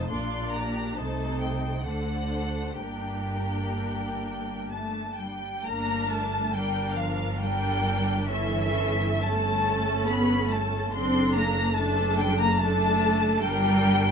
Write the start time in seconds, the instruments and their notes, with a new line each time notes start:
Already playing: violin section A5
0.10 double bass section A#1, cello section A#2, viola section A#3 D4, violin section F4 D5 C6
0.53 violin section G4 A#5
0.96 double bass section C2, cello section C3, viola section A3 D#4, violin section A4 C5 A5
1.39 violin section G5
1.84 double bass section D2, cello section D3, viola section A3 D4, violin section A4 C5 F#5
2.75 double bass section G1, cello section G2, viola section D4, violin section G4 A#4 G5
2.79 viola section A#3
4.71 cello section A3, violin section A5
5.17 cello section G3, violin section G5
5.65 double bass section G1, cello section A#3, viola section D4 A#4, violin section A#5
6.09 cello section A3, violin section A5
6.53 cello section G3, viola section D4 A#4, violin section G5
6.96 cello section F3, violin section F5
7.39 cello section G3, viola section D4 A#4, violin section G5
8.27 cello section E3, viola section C#4 A4, violin section E5
9.21 cello section A3, viola section C#4 A4, violin section A5
10.07 cello section B3, violin section B5
10.50 cello section A3, violin section A5
10.92 double bass section F#1, cello section C4, viola section D4 A4, violin section C6
11.32 cello section A#3, violin section A#5
11.76 cello section A3, viola section D4 A4, violin section A5
12.19 cello section G3, violin section G5
12.38 cello section A#3, violin section A#5
12.59 cello section A3, viola section D4 A4, violin section A5
13.43 double bass section G1, cello section G3, viola section D4 A#4, violin section G5